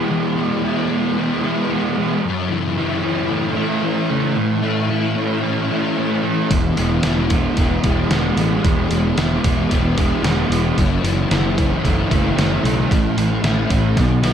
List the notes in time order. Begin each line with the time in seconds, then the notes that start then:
Already playing: E3 G#3 B3 E4
0.09 E2 E3
0.36 B2 G#3
0.64 E3 E4
0.89 G#3 B3
1.17 E3 B3
1.44 G#3 E4
1.71 G#3 B3
1.97 E3 G#3
2.22 F#2
2.49 C#3 E3
2.77 E3 E4
3.04 E3 C#4
3.30 E3 A3
3.56 A3 E4
3.83 E3 C#4
4.10 C#3 A3
4.36 A2
4.62 E3 A3
4.89 E3 E4
5.16 A3 C#4
5.43 E3 C#4
5.70 A3 E4
5.97 A3 C#4
6.23 E3 A3
6.50 E1 E2 E3, kick, open hi-hat
6.76 E1 B2 G#3, open hi-hat
7.03 E1 E3 E4, snare, open hi-hat
7.30 G#3 B3, kick, open hi-hat
7.57 E1 E3 B3, kick, open hi-hat
7.84 E1 G#3 E4, kick, open hi-hat
8.10 E1 G#3 B3, snare, open hi-hat
8.37 A1 E3 G#3, open hi-hat
8.65 E1 E2 E3, kick, open hi-hat
8.91 E1 B2 G#3, open hi-hat
9.17 E1 E3 E4, snare, open hi-hat
9.44 E1 G#3 B3, kick, open hi-hat
9.70 E1 E3 B3, kick, open hi-hat
9.98 G#3 E4, kick, open hi-hat
10.23 E1 G#3 B3, snare, open hi-hat
10.50 E1 E3 G#3, open hi-hat
10.77 F#1 F#2, kick, open hi-hat
11.03 F#1 C#3 E3, open hi-hat
11.30 F#1 E3 E4, snare, open hi-hat
11.58 E3 C#4, kick, open hi-hat
11.82 F#1 E3 A3, kick, open hi-hat
12.10 F#1 A3 E4, kick, open hi-hat
12.36 F#1 E3 C#4, snare, open hi-hat
12.63 B1 C#3 A3, open hi-hat
12.90 A1 A2, kick, open hi-hat
13.17 A1 E3 A3, open hi-hat
13.43 A1 E3 E4, snare, open hi-hat
13.69 A1 A3 C#4, kick, open hi-hat
13.95 B1 B2, kick, snare, open hi-hat
14.23 B3 E4, snare, open hi-hat